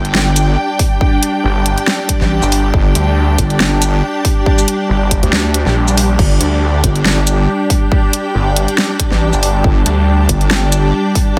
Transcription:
Already playing: G1 G3 D4 G4 D5 G5 A5
0.05 closed hi-hat
0.15 snare
0.36 closed hi-hat, shaker
0.79 kick, open hi-hat
1.01 kick
1.23 closed hi-hat
1.44 G1
1.66 closed hi-hat
1.78 closed hi-hat
1.87 snare
2.09 kick, closed hi-hat
2.21 A1, snare
2.42 G1, shaker
2.52 open hi-hat
2.74 G1, kick
2.95 D2, closed hi-hat
3.38 G1, kick, closed hi-hat
3.50 closed hi-hat
3.60 snare
3.82 closed hi-hat, shaker
4.25 kick, open hi-hat
4.46 kick
4.58 shaker
4.68 closed hi-hat
4.90 G1
5.11 kick, closed hi-hat
5.23 D2, closed hi-hat
5.33 snare
5.54 closed hi-hat
5.66 A#1, snare
5.88 shaker
5.97 open hi-hat
6.19 G1 G5, kick, crash
6.41 D2, closed hi-hat
6.84 G1, kick, closed hi-hat
6.96 closed hi-hat
7.05 snare
7.27 closed hi-hat, shaker
7.70 kick, open hi-hat
7.92 kick
8.13 closed hi-hat
8.35 G1
8.56 closed hi-hat
8.68 closed hi-hat
8.78 snare
9.00 kick, closed hi-hat
9.07 A5
9.11 A1, snare
9.33 G1, shaker
9.43 open hi-hat
9.64 G1, kick
9.86 D2, closed hi-hat
10.29 G1, kick, closed hi-hat
10.41 closed hi-hat
10.51 snare
10.72 closed hi-hat, shaker
11.15 kick, open hi-hat

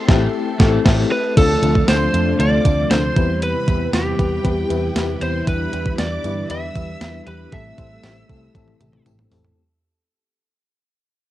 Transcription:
Already playing: A3 C4 E4 G4 A4 E5 G5 C6
0.08 A1 A2 E3 A3 C4 E4 G4 A4, kick, snare
0.59 A1 A2 E3 A3 C4 E4 G4 A4, kick, snare
0.63 A3
0.84 A1 A2 E3 A3 C4 E4 G4 A4, kick, snare, crash
0.89 A3
1.12 B4
1.36 D2 C3 F3 A3 C4 D4 F4 A4 A5, kick, closed hi-hat, crash, tambourine
1.62 D2 A3 C4 D4 F4 A4, closed hi-hat, tambourine
1.75 kick
1.88 D2 A3 C4 D4 F4 A4 C5 C6, snare, closed hi-hat, tambourine
2.13 F2 A3 C4 D4 F4 A4, closed hi-hat, tambourine
2.39 D2 A3 C4 D4 F4 A4 D5 D6, closed hi-hat, tambourine
2.65 D2 A3 C4 D4 F4 A4, kick, closed hi-hat, tambourine
2.90 D2 A3 C4 D4 F4 A4 C5 C6, snare, closed hi-hat, tambourine
3.16 E2 E3 G3 B3 C4 E4 G4 B4, kick, closed hi-hat, tambourine
3.42 B4 B5, closed hi-hat, tambourine
3.67 E2 B3 C4 E4 G4 B4, kick, closed hi-hat, tambourine
3.93 E2 B3 C4 E4 G4 B4 G5, snare, closed hi-hat, tambourine
4.18 E2 B3 C4 E4 G4 B4, kick, closed hi-hat, tambourine
4.44 E2 B3 C4 E4 G4 B4, kick, closed hi-hat
4.69 E2 B3 C4 E4 G4 B4, closed hi-hat, tambourine
4.95 E2 B3 C4 E4 G4 B4, snare, closed hi-hat, tambourine
5.21 E2 B3 C4 E4 G4 B4 C5 C6, closed hi-hat, tambourine
5.46 E2 D3 G3 B3 D4 E4 G4 B4 B5, kick, closed hi-hat, tambourine
5.72 E2 B3 D4 E4 G4 B4, closed hi-hat, tambourine
5.86 kick
5.98 E2 B3 D4 E4 G4 B4 D5 D6, snare, closed hi-hat, tambourine
6.24 G2 B3 D4 E4 G4 B4, closed hi-hat, tambourine
6.49 E2 B3 D4 E4 G4 B4 E5 E6, closed hi-hat, tambourine
6.75 E2 B3 D4 E4 G4 B4, kick, closed hi-hat, tambourine
7.01 E2 B3 D4 E4 G4 B4, snare, closed hi-hat, tambourine
7.26 E2 B3 D4 E4 G4 B4 B5, closed hi-hat, tambourine
7.52 A1 C3 A3 C4 E4 G4 A4 E5 E6, kick, closed hi-hat, tambourine
7.78 A1 A3 C4 E4 G4 C5, kick, closed hi-hat, tambourine
8.03 A1 A3 C4 E4 G4 C5, snare, closed hi-hat, tambourine
8.28 C2 A3 C4 E4 G4 A4, kick, closed hi-hat, tambourine
8.54 A1 A3 C4 E4 G4 A4, kick, closed hi-hat, high tom, tambourine
8.68 high tom
8.80 A1 A3 C4 E4 G4 A4, closed hi-hat, mid tom, tambourine
8.93 mid tom
9.05 A1 A3 C4 E4 G4 A4, closed hi-hat, mid tom, tambourine
9.19 mid tom
9.31 A1 A3 C4 E4 G4 A4, floor tom, open hi-hat, tambourine
9.45 floor tom

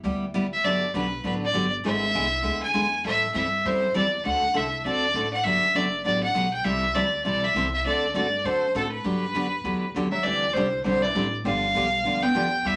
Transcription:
0.04 D2 G3 B3 E4 G4
0.34 G3 B3 E4 G4
0.53 E5
0.64 G1 D3 F#3 B3 D4 G4 D5
0.94 B1 D3 F#3 B3 D4 G4 B4
1.24 A1 D3 F#3 B3 D4 G4 B4
1.44 D5
1.53 G1 D3 F#3 B3 D4 G4
1.84 G#1 D3 G#3 B3 E4 G#4 E5
2.14 C2 D3 G#3 B3 E4 G#4
2.42 D2 D3 G#3 B3 E4 G#4
2.63 G#5
2.74 E2 D3 G#3 B3 E4 G#4
3.04 A2 E3 G3 C4 E4 A4 E5
3.34 G2 E3 G3 C4 E4 A4 E5
3.65 F#2 E3 G3 C4 E4 A4 C5
3.94 E2 E3 G3 C4 E4 A4 D5
4.25 D2 D3 A3 C4 F#4 A4 F#5
4.44 muted upright bass stroke
4.54 C2 D3 A3 C4 F#4 A4 E5
4.85 D2 D3 A3 C4 F#4 A4 D5
5.14 A1 D3 A3 C4 F#4 A4
5.33 F#5
5.44 G1 D3 F#3 B3 D4 G4 E5
5.75 F#1 D3 F#3 B3 D4 G4 D5
6.05 A1 D3 F#3 B3 D4 G4 D5
6.23 F#5
6.34 B1 D3 F#3 B3 D4 G4
6.53 G5
6.64 C2 C3 E3 G3 C4 E4 A4 E5
6.94 D2 C3 E3 G3 C4 E4 A4 D5
7.24 B1 C3 E3 G3 C4 E4 A4 D5
7.44 E5
7.54 C2 C3 E3 G3 C4 E4 A4
7.74 E5
7.85 D2 D3 A3 C4 F#4 A4 D5
8.14 G2 D3 A3 C4 F#4 A4 D5
8.44 F#2 D3 A3 C4 F#4 A4 C5
8.75 A2 D3 A3 C4 F#4 A4
8.91 B4
9.04 G2 D3 F#3 B3 D4 G4
9.34 F#2 D3 F#3 B3 D4 G4
9.64 E2 D3 F#3 B3 D4 G4
9.95 D#2 D3 F#3 B3 D4 G4
10.11 F#3 E5
10.23 D2 D3 E3 G3 C4 D4 G4 D5
10.53 C2 D3 G3 C4 D4 G4 C5
10.84 B1 D3 G3 C4 D4 G4 C5
11.02 E3 D5
11.15 A1 D3 G3 C4 D4 G4
11.45 G1 D3 F3 G3 B3 D4 G4 F5
11.74 B1 D3 F3 B3 D4 G4
12.04 D2 D3 F3 B3 D4 G4
12.23 B3 G5
12.34 F2 D3 F3 B3 D4 G4
12.65 E2 C3 G3 B3 E4 G4 E5

